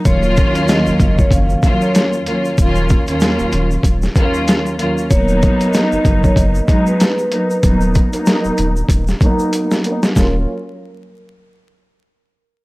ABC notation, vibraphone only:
X:1
M:4/4
L:1/16
Q:"Swing 16ths" 1/4=95
K:Ebm
V:1 name="Vibraphone"
d4 e3 d f3 d4- d | z16 | d4 z3 d e3 c4- c | z16 |
B2 z12 z2 |]